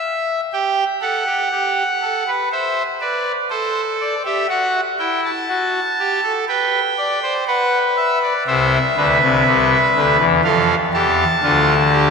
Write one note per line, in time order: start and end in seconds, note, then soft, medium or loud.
0.00 0.41 E5 medium
0.53 0.84 G4 medium
0.53 0.84 G5 medium
1.01 1.24 A4 medium
1.01 2.30 F#5 medium
1.27 1.49 G4 medium
1.52 1.83 G4 medium
2.02 2.24 A4 medium
2.27 2.49 B4 medium
2.52 2.83 C5 medium
2.52 2.83 E5 medium
3.01 3.32 B4 medium
3.01 3.32 D5 medium
3.50 4.15 A4 medium
3.50 3.81 C5 medium
4.01 4.22 D5 medium
4.25 4.47 G4 medium
4.25 4.47 E5 medium
4.49 4.80 F#4 medium
4.49 4.80 F#5 medium
4.99 5.30 E4 medium
4.99 5.21 G5 medium
5.25 6.32 A5 medium
5.49 5.80 F#4 medium
5.99 6.21 G4 medium
6.24 6.45 A4 medium
6.48 6.79 B4 medium
6.48 7.34 G5 medium
6.98 7.19 D5 medium
7.23 7.44 C5 medium
7.47 8.33 B4 medium
7.47 7.78 F#5 medium
7.97 8.18 E5 medium
8.22 8.44 D5 medium
8.47 8.78 C2 medium
8.47 8.78 C3 medium
8.47 8.78 C5 medium
8.47 10.17 E5 medium
8.96 9.18 D2 medium
8.96 9.18 D3 medium
8.96 10.24 B4 medium
9.22 9.43 C2 medium
9.22 9.43 C3 medium
9.46 9.77 C2 medium
9.46 9.77 C3 medium
9.95 10.17 D2 medium
9.95 10.17 D3 medium
10.19 10.41 E2 medium
10.19 10.41 E3 medium
10.44 10.75 F2 medium
10.44 10.75 F3 medium
10.44 10.75 A4 medium
10.44 10.75 F5 medium
10.93 11.25 E2 medium
10.93 11.25 E3 medium
10.93 11.25 G4 medium
10.93 12.10 A5 medium
11.43 12.08 D2 loud
11.43 12.08 D3 medium
11.43 11.74 F4 medium
11.92 12.10 G4 medium